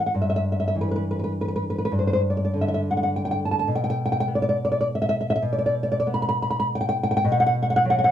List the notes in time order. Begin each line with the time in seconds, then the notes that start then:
Already playing: E3 G3
0.06 F#5
0.15 G2
0.22 E5
0.30 E5
0.36 E5
0.52 E5
0.60 E5
0.68 E5
0.75 E3
0.81 B4
0.91 B4
0.96 B4
1.11 B4
1.19 B4
1.24 B4
1.41 B4
1.48 B4
1.56 B4
1.70 B4
1.78 B4
1.85 B4
1.92 G2
1.99 C5
2.07 C5
2.13 C5
2.30 D5
2.37 D5
2.45 D5
2.54 D3
2.61 E5
2.68 E5
2.74 E5
2.91 F#5
2.97 F#5
3.03 F#5
3.16 G5
3.25 G5
3.31 G5
3.45 A5
3.51 A5
3.59 A5
3.67 B2
3.75 G5
3.84 G5
3.90 G5
4.06 G5
4.12 G5
4.20 G5
4.28 B3
4.35 D5
4.42 D5
4.49 D5
4.65 D5
4.72 D5
4.81 D5
4.95 E5
5.02 E5
5.09 E5
5.21 E5
5.30 E5
5.36 E5
5.42 B2
5.53 D5
5.58 D5
5.66 D5
5.83 D5
5.92 D5
6.00 D5
6.07 B3
6.14 B5
6.22 B5
6.29 B5
6.42 B5
6.50 B5
6.60 B5
6.75 G5
6.81 G5
6.89 G5
7.03 G5
7.11 G5
7.17 G5
7.24 B2
7.32 F#5
7.40 F#5
7.46 F#5
7.62 F#5
7.70 F#5
7.76 F#5
7.85 F#3
7.90 F#5
7.99 F#5
8.04 F#5